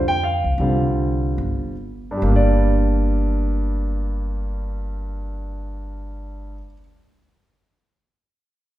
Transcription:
Already playing: upright bass F2
0.08 grand piano G5
0.24 grand piano F5
0.44 upright bass C#2
0.58 upright bass C2, grand piano D3 G3 C4 F4
1.38 upright bass G1
2.11 grand piano G2
2.17 grand piano G3
2.22 upright bass G1, grand piano A#3
2.30 grand piano D4
2.36 grand piano D5

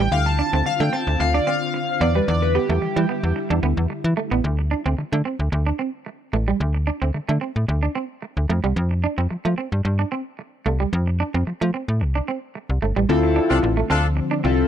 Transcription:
Already playing: analog polysynth G5
0.11 fm bass D2, string machine D3 C4 F4, analog polysynth F5
0.26 analog polysynth A5, muted clean electric guitar stroke
0.39 clean electric guitar D4, analog polysynth A5
0.53 fm bass D2, clean electric guitar C4
0.66 fm bass D3, analog polysynth F5, muted clean electric guitar stroke
0.80 fm bass D3, clean electric guitar A3, analog polysynth G5
0.93 clean electric guitar C4, analog polysynth A5
1.07 fm bass D2
1.20 fm bass D2, analog polysynth F5, muted clean electric guitar stroke
1.34 clean electric guitar D4, analog polysynth D5
1.47 clean electric guitar C4, analog polysynth F5
1.74 muted clean electric guitar stroke
2.01 fm bass E2, string machine G3 E4, clean electric guitar B3, analog polysynth D5
2.15 clean electric guitar G3, analog polysynth B4
2.28 fm bass E2, analog polysynth D5
2.42 analog polysynth B4, muted clean electric guitar stroke
2.55 clean electric guitar B3, analog polysynth G4
2.69 fm bass E2, clean electric guitar A3
2.82 fm bass E3, muted clean electric guitar stroke
2.96 fm bass E3, clean electric guitar G3
3.09 clean electric guitar B3
3.23 fm bass E2
3.36 muted clean electric guitar stroke
3.50 fm bass E2, clean electric guitar D4
3.63 fm bass D2, clean electric guitar B3
3.77 fm bass E2
3.90 muted clean electric guitar stroke
4.04 fm bass E3
4.17 clean electric guitar A3
4.31 fm bass A1, clean electric guitar B3
4.44 fm bass D2
4.59 muted clean electric guitar stroke
4.71 clean electric guitar D4
4.86 fm bass D2, clean electric guitar C4
4.98 fm bass D3, muted clean electric guitar stroke
5.12 fm bass D3, clean electric guitar A3
5.25 clean electric guitar C4
5.39 fm bass D2
5.52 fm bass D2, muted clean electric guitar stroke
5.67 clean electric guitar D4
5.79 clean electric guitar C4
6.06 muted clean electric guitar stroke
6.33 fm bass A1, clean electric guitar A3
6.48 clean electric guitar G3
6.60 fm bass D2
6.74 muted clean electric guitar stroke
6.87 clean electric guitar D4
7.02 fm bass D2, clean electric guitar C4
7.14 fm bass D3, muted clean electric guitar stroke
7.29 fm bass D3, clean electric guitar A3
7.41 clean electric guitar C4
7.56 fm bass A2
7.68 fm bass D2, muted clean electric guitar stroke
7.83 clean electric guitar D4
7.95 clean electric guitar C4
8.22 muted clean electric guitar stroke
8.37 fm bass D2
8.49 fm bass F2, clean electric guitar A3
8.64 fm bass C2, clean electric guitar G3
8.76 fm bass F2
8.91 muted clean electric guitar stroke
9.04 clean electric guitar D4
9.18 fm bass F2, clean electric guitar C4
9.31 fm bass F3, muted clean electric guitar stroke
9.45 fm bass F3, clean electric guitar A3
9.58 clean electric guitar C4
9.72 fm bass G2
9.85 fm bass G2, muted clean electric guitar stroke
9.99 clean electric guitar D4
10.12 clean electric guitar C4
10.39 muted clean electric guitar stroke
10.66 fm bass C2, clean electric guitar A3
10.80 clean electric guitar G3
10.93 fm bass F2
11.07 muted clean electric guitar stroke
11.20 clean electric guitar D4
11.34 fm bass F2, clean electric guitar C4
11.47 fm bass F3, muted clean electric guitar stroke
11.61 fm bass F3, clean electric guitar A3
11.74 clean electric guitar C4
11.88 fm bass A2
12.01 fm bass C2, muted clean electric guitar stroke
12.15 clean electric guitar D4
12.28 clean electric guitar C4
12.55 muted clean electric guitar stroke
12.70 fm bass C2
12.82 fm bass G1, clean electric guitar A3
12.96 fm bass A1, clean electric guitar G3
13.09 fm bass D2, string machine D3 F3 C4, analog polysynth C4 E4 F4 A4
13.23 muted clean electric guitar stroke
13.36 clean electric guitar D4
13.50 fm bass C2, clean electric guitar C4, horn section D4 F4 A4
13.63 fm bass A1, muted clean electric guitar stroke
13.77 clean electric guitar A3
13.90 fm bass D2, clean electric guitar C4, horn section D4 F4 A4
14.17 muted clean electric guitar stroke
14.31 clean electric guitar D4
14.44 fm bass C2, clean electric guitar C4, analog polysynth C4 E4 F4 A4

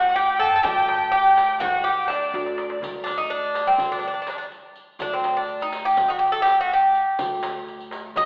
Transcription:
Already playing: upright bass D2, bouzouki F#4, violin section F#5, ney F#5
0.14 bouzouki G4, ney G5, violin section G5, riq, darbuka ka
0.39 bouzouki A4, violin section A5, riq, darbuka ka
0.56 bouzouki A4
0.63 upright bass D2, bouzouki G4, ney G5, violin section G5, riq, darbuka dum
0.89 ney A5, darbuka tek
1.07 ney A5
1.12 bouzouki G4, violin section G5, ney G5, riq, darbuka ka
1.26 riq
1.37 riq, darbuka tek
1.60 upright bass D2, bouzouki F#4, ney F#5, violin section F#5, riq, darbuka dum
1.84 bouzouki G4, violin section G5, ney G5, riq
2.08 bouzouki D4, ney D5, violin section D5, riq, darbuka tek
2.22 riq, darbuka ka
2.34 upright bass D2, riq, darbuka tek
2.46 darbuka ka
2.58 riq, darbuka tek
2.70 darbuka ka
2.82 upright bass D2, riq, darbuka dum
3.04 bouzouki D4, riq, darbuka tek
3.18 bouzouki D#4
3.30 bouzouki D4, riq, darbuka ka
3.43 riq
3.54 riq, darbuka tek
3.67 bouzouki C4
3.78 upright bass D2, riq, darbuka dum
3.92 bouzouki D4
3.99 bouzouki D4, riq
4.08 bouzouki D4
4.14 bouzouki D4
4.22 bouzouki D4
4.27 bouzouki D4, riq, darbuka tek
4.38 bouzouki D4
4.52 riq
4.76 riq, darbuka ka
4.99 upright bass D2, bouzouki D4, riq, darbuka dum
5.14 bouzouki C4
5.24 riq, darbuka tek
5.37 bouzouki D4
5.48 riq, darbuka ka
5.60 bouzouki D#4, riq
5.73 riq, darbuka tek
5.85 bouzouki G4
5.97 upright bass D2, riq, darbuka dum
6.08 bouzouki D#4 F#4
6.19 bouzouki G4, riq
6.32 bouzouki A4
6.42 bouzouki G4, riq
6.46 darbuka tek
6.61 bouzouki F#4
6.71 bouzouki G4, riq
6.95 riq, darbuka ka
7.19 upright bass D2, riq, darbuka dum
7.43 riq, darbuka tek
7.67 riq, darbuka ka
7.80 riq
7.91 riq, darbuka tek
8.16 upright bass D2, bouzouki D#5, riq, darbuka dum

